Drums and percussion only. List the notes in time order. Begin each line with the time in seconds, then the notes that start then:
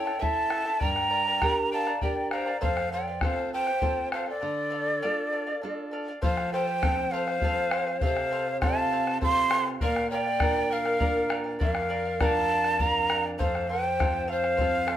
0.07 bombo rim
0.22 bombo rim, bombo low
0.37 bombo rim
0.50 bombo rim
0.81 bombo low
0.96 bombo rim
1.42 bombo rim, bombo low
1.72 bombo rim
1.87 bombo rim
2.02 bombo rim, bombo low
2.17 bombo rim
2.31 bombo rim
2.63 bombo low
2.77 bombo rim
3.21 bombo rim, bombo low
3.52 bombo rim
3.67 bombo rim
3.82 bombo rim, bombo low
3.98 bombo rim
4.12 bombo rim
6.23 bombo low
6.37 bombo rim
6.54 bombo rim
6.67 bombo rim
6.83 bombo rim, bombo low
7.28 bombo rim
7.41 bombo rim, bombo low
7.71 bombo rim
7.86 bombo rim
8.01 bombo low
8.17 bombo rim
8.32 bombo rim
8.62 bombo rim, bombo low
9.07 bombo rim
9.22 bombo rim, bombo low
9.37 bombo rim
9.51 bombo rim
9.67 bombo rim
9.81 bombo low
9.96 bombo rim
10.12 bombo rim
10.26 bombo rim
10.40 bombo rim, bombo low
10.86 bombo rim
11.00 bombo rim, bombo low
11.17 bombo rim
11.30 bombo rim
11.45 bombo rim
11.61 bombo low
11.75 bombo rim
11.90 bombo rim
12.21 bombo rim, bombo low
12.36 bombo rim
12.64 bombo rim
12.79 bombo low
13.10 bombo rim
13.40 bombo low
13.55 bombo rim
13.71 bombo rim
13.85 bombo rim
14.00 bombo rim, bombo low
14.44 bombo rim
14.59 bombo rim, bombo low
14.88 bombo rim